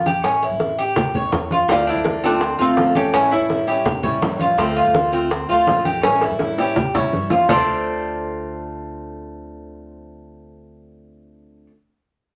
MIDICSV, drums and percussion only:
0, 0, Header, 1, 2, 480
1, 0, Start_track
1, 0, Key_signature, -1, "minor"
1, 0, Tempo, 362757
1, 319, Time_signature, 4, 2, 24, 8
1, 16343, End_track
2, 0, Start_track
2, 0, Title_t, "Drums"
2, 72, Note_on_c, 9, 70, 78
2, 77, Note_on_c, 9, 60, 35
2, 82, Note_on_c, 9, 63, 91
2, 205, Note_off_c, 9, 70, 0
2, 209, Note_off_c, 9, 60, 0
2, 214, Note_off_c, 9, 63, 0
2, 314, Note_on_c, 9, 70, 96
2, 317, Note_on_c, 9, 60, 69
2, 321, Note_on_c, 9, 63, 34
2, 447, Note_off_c, 9, 70, 0
2, 449, Note_off_c, 9, 60, 0
2, 453, Note_off_c, 9, 63, 0
2, 563, Note_on_c, 9, 63, 32
2, 563, Note_on_c, 9, 70, 32
2, 564, Note_on_c, 9, 60, 36
2, 695, Note_off_c, 9, 63, 0
2, 695, Note_off_c, 9, 70, 0
2, 696, Note_off_c, 9, 60, 0
2, 793, Note_on_c, 9, 60, 64
2, 793, Note_on_c, 9, 63, 63
2, 801, Note_on_c, 9, 70, 30
2, 925, Note_off_c, 9, 60, 0
2, 925, Note_off_c, 9, 63, 0
2, 933, Note_off_c, 9, 70, 0
2, 1035, Note_on_c, 9, 63, 36
2, 1038, Note_on_c, 9, 70, 73
2, 1168, Note_off_c, 9, 63, 0
2, 1171, Note_off_c, 9, 70, 0
2, 1274, Note_on_c, 9, 60, 73
2, 1278, Note_on_c, 9, 63, 38
2, 1278, Note_on_c, 9, 64, 88
2, 1279, Note_on_c, 9, 70, 91
2, 1406, Note_off_c, 9, 60, 0
2, 1410, Note_off_c, 9, 63, 0
2, 1410, Note_off_c, 9, 64, 0
2, 1412, Note_off_c, 9, 70, 0
2, 1510, Note_on_c, 9, 60, 36
2, 1519, Note_on_c, 9, 63, 36
2, 1519, Note_on_c, 9, 64, 73
2, 1523, Note_on_c, 9, 70, 28
2, 1642, Note_off_c, 9, 60, 0
2, 1651, Note_off_c, 9, 63, 0
2, 1651, Note_off_c, 9, 64, 0
2, 1655, Note_off_c, 9, 70, 0
2, 1753, Note_on_c, 9, 60, 70
2, 1753, Note_on_c, 9, 61, 82
2, 1755, Note_on_c, 9, 63, 85
2, 1766, Note_on_c, 9, 70, 30
2, 1885, Note_off_c, 9, 60, 0
2, 1885, Note_off_c, 9, 61, 0
2, 1887, Note_off_c, 9, 63, 0
2, 1899, Note_off_c, 9, 70, 0
2, 1994, Note_on_c, 9, 63, 88
2, 2002, Note_on_c, 9, 70, 77
2, 2126, Note_off_c, 9, 63, 0
2, 2134, Note_off_c, 9, 70, 0
2, 2234, Note_on_c, 9, 63, 37
2, 2236, Note_on_c, 9, 60, 77
2, 2247, Note_on_c, 9, 70, 94
2, 2367, Note_off_c, 9, 63, 0
2, 2369, Note_off_c, 9, 60, 0
2, 2380, Note_off_c, 9, 70, 0
2, 2474, Note_on_c, 9, 60, 36
2, 2483, Note_on_c, 9, 63, 36
2, 2486, Note_on_c, 9, 70, 32
2, 2606, Note_off_c, 9, 60, 0
2, 2615, Note_off_c, 9, 63, 0
2, 2618, Note_off_c, 9, 70, 0
2, 2707, Note_on_c, 9, 60, 64
2, 2717, Note_on_c, 9, 63, 98
2, 2720, Note_on_c, 9, 70, 30
2, 2839, Note_off_c, 9, 60, 0
2, 2849, Note_off_c, 9, 63, 0
2, 2852, Note_off_c, 9, 70, 0
2, 2957, Note_on_c, 9, 70, 73
2, 2959, Note_on_c, 9, 63, 36
2, 3089, Note_off_c, 9, 70, 0
2, 3092, Note_off_c, 9, 63, 0
2, 3189, Note_on_c, 9, 60, 74
2, 3194, Note_on_c, 9, 63, 36
2, 3203, Note_on_c, 9, 70, 88
2, 3321, Note_off_c, 9, 60, 0
2, 3326, Note_off_c, 9, 63, 0
2, 3335, Note_off_c, 9, 70, 0
2, 3427, Note_on_c, 9, 60, 34
2, 3434, Note_on_c, 9, 63, 34
2, 3442, Note_on_c, 9, 70, 28
2, 3560, Note_off_c, 9, 60, 0
2, 3566, Note_off_c, 9, 63, 0
2, 3574, Note_off_c, 9, 70, 0
2, 3666, Note_on_c, 9, 60, 73
2, 3666, Note_on_c, 9, 61, 82
2, 3673, Note_on_c, 9, 63, 83
2, 3674, Note_on_c, 9, 70, 31
2, 3798, Note_off_c, 9, 60, 0
2, 3798, Note_off_c, 9, 61, 0
2, 3806, Note_off_c, 9, 63, 0
2, 3807, Note_off_c, 9, 70, 0
2, 3905, Note_on_c, 9, 63, 85
2, 3914, Note_on_c, 9, 60, 38
2, 3917, Note_on_c, 9, 70, 74
2, 4038, Note_off_c, 9, 63, 0
2, 4046, Note_off_c, 9, 60, 0
2, 4049, Note_off_c, 9, 70, 0
2, 4141, Note_on_c, 9, 63, 36
2, 4151, Note_on_c, 9, 60, 74
2, 4154, Note_on_c, 9, 70, 93
2, 4273, Note_off_c, 9, 63, 0
2, 4283, Note_off_c, 9, 60, 0
2, 4286, Note_off_c, 9, 70, 0
2, 4388, Note_on_c, 9, 63, 35
2, 4391, Note_on_c, 9, 60, 37
2, 4399, Note_on_c, 9, 70, 33
2, 4521, Note_off_c, 9, 63, 0
2, 4523, Note_off_c, 9, 60, 0
2, 4531, Note_off_c, 9, 70, 0
2, 4629, Note_on_c, 9, 60, 64
2, 4629, Note_on_c, 9, 63, 62
2, 4634, Note_on_c, 9, 70, 30
2, 4761, Note_off_c, 9, 60, 0
2, 4762, Note_off_c, 9, 63, 0
2, 4766, Note_off_c, 9, 70, 0
2, 4863, Note_on_c, 9, 63, 34
2, 4870, Note_on_c, 9, 70, 67
2, 4995, Note_off_c, 9, 63, 0
2, 5003, Note_off_c, 9, 70, 0
2, 5098, Note_on_c, 9, 70, 96
2, 5100, Note_on_c, 9, 63, 37
2, 5100, Note_on_c, 9, 64, 89
2, 5107, Note_on_c, 9, 60, 73
2, 5231, Note_off_c, 9, 70, 0
2, 5233, Note_off_c, 9, 63, 0
2, 5233, Note_off_c, 9, 64, 0
2, 5239, Note_off_c, 9, 60, 0
2, 5335, Note_on_c, 9, 63, 35
2, 5335, Note_on_c, 9, 64, 73
2, 5340, Note_on_c, 9, 70, 29
2, 5346, Note_on_c, 9, 60, 37
2, 5467, Note_off_c, 9, 63, 0
2, 5467, Note_off_c, 9, 64, 0
2, 5472, Note_off_c, 9, 70, 0
2, 5479, Note_off_c, 9, 60, 0
2, 5580, Note_on_c, 9, 63, 87
2, 5580, Note_on_c, 9, 70, 32
2, 5589, Note_on_c, 9, 60, 71
2, 5589, Note_on_c, 9, 61, 88
2, 5713, Note_off_c, 9, 63, 0
2, 5713, Note_off_c, 9, 70, 0
2, 5722, Note_off_c, 9, 60, 0
2, 5722, Note_off_c, 9, 61, 0
2, 5815, Note_on_c, 9, 63, 84
2, 5815, Note_on_c, 9, 70, 81
2, 5947, Note_off_c, 9, 63, 0
2, 5947, Note_off_c, 9, 70, 0
2, 6054, Note_on_c, 9, 70, 96
2, 6059, Note_on_c, 9, 63, 37
2, 6066, Note_on_c, 9, 60, 72
2, 6186, Note_off_c, 9, 70, 0
2, 6192, Note_off_c, 9, 63, 0
2, 6198, Note_off_c, 9, 60, 0
2, 6299, Note_on_c, 9, 70, 32
2, 6306, Note_on_c, 9, 63, 33
2, 6307, Note_on_c, 9, 60, 37
2, 6431, Note_off_c, 9, 70, 0
2, 6438, Note_off_c, 9, 63, 0
2, 6439, Note_off_c, 9, 60, 0
2, 6542, Note_on_c, 9, 63, 92
2, 6543, Note_on_c, 9, 70, 30
2, 6546, Note_on_c, 9, 60, 64
2, 6674, Note_off_c, 9, 63, 0
2, 6675, Note_off_c, 9, 70, 0
2, 6678, Note_off_c, 9, 60, 0
2, 6777, Note_on_c, 9, 70, 75
2, 6782, Note_on_c, 9, 63, 37
2, 6909, Note_off_c, 9, 70, 0
2, 6915, Note_off_c, 9, 63, 0
2, 7015, Note_on_c, 9, 70, 89
2, 7028, Note_on_c, 9, 63, 37
2, 7029, Note_on_c, 9, 60, 72
2, 7147, Note_off_c, 9, 70, 0
2, 7161, Note_off_c, 9, 60, 0
2, 7161, Note_off_c, 9, 63, 0
2, 7262, Note_on_c, 9, 70, 29
2, 7266, Note_on_c, 9, 63, 35
2, 7277, Note_on_c, 9, 60, 37
2, 7394, Note_off_c, 9, 70, 0
2, 7398, Note_off_c, 9, 63, 0
2, 7410, Note_off_c, 9, 60, 0
2, 7503, Note_on_c, 9, 63, 79
2, 7504, Note_on_c, 9, 70, 31
2, 7509, Note_on_c, 9, 60, 68
2, 7509, Note_on_c, 9, 61, 90
2, 7635, Note_off_c, 9, 63, 0
2, 7637, Note_off_c, 9, 70, 0
2, 7641, Note_off_c, 9, 60, 0
2, 7641, Note_off_c, 9, 61, 0
2, 7743, Note_on_c, 9, 63, 82
2, 7746, Note_on_c, 9, 70, 81
2, 7752, Note_on_c, 9, 60, 36
2, 7875, Note_off_c, 9, 63, 0
2, 7879, Note_off_c, 9, 70, 0
2, 7884, Note_off_c, 9, 60, 0
2, 7982, Note_on_c, 9, 63, 35
2, 7984, Note_on_c, 9, 60, 108
2, 7989, Note_on_c, 9, 70, 99
2, 8114, Note_off_c, 9, 63, 0
2, 8117, Note_off_c, 9, 60, 0
2, 8121, Note_off_c, 9, 70, 0
2, 8223, Note_on_c, 9, 60, 103
2, 8224, Note_on_c, 9, 63, 35
2, 8229, Note_on_c, 9, 70, 33
2, 8355, Note_off_c, 9, 60, 0
2, 8356, Note_off_c, 9, 63, 0
2, 8361, Note_off_c, 9, 70, 0
2, 8458, Note_on_c, 9, 60, 89
2, 8470, Note_on_c, 9, 63, 61
2, 8478, Note_on_c, 9, 70, 28
2, 8590, Note_off_c, 9, 60, 0
2, 8602, Note_off_c, 9, 63, 0
2, 8610, Note_off_c, 9, 70, 0
2, 8708, Note_on_c, 9, 61, 74
2, 8710, Note_on_c, 9, 63, 33
2, 8715, Note_on_c, 9, 70, 76
2, 8841, Note_off_c, 9, 61, 0
2, 8842, Note_off_c, 9, 63, 0
2, 8848, Note_off_c, 9, 70, 0
2, 8947, Note_on_c, 9, 61, 86
2, 8952, Note_on_c, 9, 70, 97
2, 8955, Note_on_c, 9, 63, 37
2, 8955, Note_on_c, 9, 64, 86
2, 9079, Note_off_c, 9, 61, 0
2, 9084, Note_off_c, 9, 70, 0
2, 9087, Note_off_c, 9, 63, 0
2, 9087, Note_off_c, 9, 64, 0
2, 9195, Note_on_c, 9, 61, 81
2, 9196, Note_on_c, 9, 70, 30
2, 9202, Note_on_c, 9, 63, 35
2, 9202, Note_on_c, 9, 64, 73
2, 9327, Note_off_c, 9, 61, 0
2, 9328, Note_off_c, 9, 70, 0
2, 9334, Note_off_c, 9, 63, 0
2, 9334, Note_off_c, 9, 64, 0
2, 9429, Note_on_c, 9, 70, 30
2, 9437, Note_on_c, 9, 63, 82
2, 9561, Note_off_c, 9, 70, 0
2, 9570, Note_off_c, 9, 63, 0
2, 9663, Note_on_c, 9, 61, 104
2, 9664, Note_on_c, 9, 63, 89
2, 9677, Note_on_c, 9, 70, 77
2, 9795, Note_off_c, 9, 61, 0
2, 9797, Note_off_c, 9, 63, 0
2, 9809, Note_off_c, 9, 70, 0
2, 9907, Note_on_c, 9, 70, 108
2, 9909, Note_on_c, 9, 61, 111
2, 9911, Note_on_c, 9, 64, 99
2, 10039, Note_off_c, 9, 70, 0
2, 10041, Note_off_c, 9, 61, 0
2, 10044, Note_off_c, 9, 64, 0
2, 16343, End_track
0, 0, End_of_file